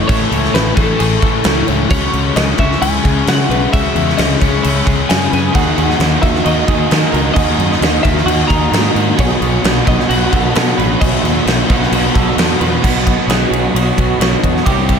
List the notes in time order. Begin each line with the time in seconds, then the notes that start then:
Already playing: E4 A4 C#5 C#6
0.08 A1 A2 E3 A3 A4 C#5, kick, crash
0.30 C#2 E3 A3, crash
0.45 snare
0.52 A1 A2 E3 A3 B4, snare, crash
0.74 A1 A2 E3 A3 A4, kick, crash
0.96 A2 E3 A3 G#4, crash
1.00 A1
1.20 A1 A2 E3 A3 A4, kick, crash
1.44 C#2 A2 E3 A3, snare, crash
1.66 C#2 E3 A3 C#5, crash
1.89 C#2 C#3 G#3 C#4 F#4 G#4 C#5 E5 D#6, kick, crash
2.12 C#2 G#3 C#4, crash
2.35 C#2 C#3 G#3 C#4 D#5, snare, crash
2.58 C#2 C#3 G#3 C#4 E5, kick, crash
2.72 snare
2.81 C#2 C#3 G#3 C#4 E4 G#5, crash
3.03 C#2 C#3 G#3 C#4 G#4, kick, crash
3.26 C#3 G#3 C#4 F#5, snare, crash
3.49 B1 G#3 C#4 B4, crash
3.72 C#2 C#3 G#3 C#4 F#4 E5 B5, kick, crash
3.95 E2 G#3 C#4, crash
4.09 snare
4.18 C#2 C#3 G#3 C#4 D#5, snare, crash
4.40 C#2 C#3 G#3 C#4 C#5, kick, crash
4.63 C#2 C#3 G#3 C#4 E4, crash
4.85 C#2 C#3 G#3 C#4 G#4, kick, crash
5.08 F#2 C#3 G#3 C#4 G#5, snare, crash
5.30 F#2 G#3 C#4 B4, crash
5.34 G#5
5.53 D#2 D#3 A#3 D#4 F#4 G#4 D#5 F#5 A#5, kick, crash
5.75 D#2 A#3 D#4 F#4, crash
5.90 snare
5.98 D#2 D#3 A#3 D#4 F#4, snare, crash
6.21 D#2 D#3 A#3 D#4 F#4 E5, kick, crash
6.35 snare
6.44 D#2 D#3 A#3 D#4 F#4 D#5, crash
6.66 D#2 D#3 A#3 D#4 F#4 G#4, kick, crash
6.89 D#3 A#3 D#4 F#4, snare, crash
7.11 C#2 A#3 D#4 F#4 A#4, crash
7.34 D#2 D#3 A#3 F#4 G#4 D#5 G#5, kick, crash
7.38 D#4
7.58 F#2 A#3 D#4 F#4, crash
7.72 snare
7.80 D#2 D#3 A#3 D#4 F#4, snare, crash
8.02 D#2 D#3 A#3 D#4 F#4 E5, kick, crash
8.18 snare
8.24 D#2 D#3 A#3 D#4 F#4 F#5, crash
8.29 F#4
8.47 D#2 D#3 A#3 D#4 F#4 G#4 A#5, kick, crash
8.71 G#2 D#3 A#3 D#4 F#4, snare, crash
8.93 G#2 A#3 D#4 F#4 A#4, crash
9.17 B1 B2 F#3 B3 D#4 F#4 G#4 C#5 B5, kick, crash
9.40 B1 F#3 B3 D#4 F#4, crash
9.62 B1 B2 F#3 B3 D#4 F#4, snare, crash
9.85 B1 B2 F#3 B3 D#4 F#4 D#5, kick, crash
10.00 snare
10.09 B1 B2 F#3 B3 D#4 F#4 F#5, crash
10.30 B1 B2 F#3 B3 D#4 F#4 A4, kick, crash
10.54 B2 F#3 B3 D#4 F#4, snare, crash
10.76 A1 B3 D#4 F#4 B4, crash
10.81 F#3
11.01 B1 B2 F#3 B3 D#4 F#4 G#4 E5, kick, crash
11.23 D#2 B3 D#4 F#4, crash
11.27 F#3
11.44 B1 B2 F#3 B3 D#4 F#4, crash
11.48 F#3 B3, snare
11.69 B1 B2 F#3 B3 D#4 F#4, kick, crash
11.83 snare
11.91 B1 B2 F#3 B3 D#4 F#4, crash
12.14 B1 B2 F#3 B3 D#4 F#4 A4, kick, crash
12.36 E2 B2 F#3 B3 D#4 F#4, snare, crash
12.59 E2 F#3 B3 D#4 F#4 B4, crash
12.82 B1 B2 F#3 B3 D#4 F#4 C#5 B5 D#6, kick, crash
13.07 kick, ride
13.27 B1 B2 F#3 B3 D#4 F#4 G#4, snare, ride
13.51 B1, ride
13.73 B1 B2 F#3 B3 D#4 F#4, ride
13.96 B1 B3 D#4 F#4, kick, ride
14.00 F#3
14.18 B1 B2 F#3 B3 D#4 F#4, snare, ride
14.43 E2, kick, ride
14.57 snare
14.63 C2 C3 G3 A#3 C4 E4 G4 G5, kick, ride
14.67 G4 C5 E6
14.89 kick, ride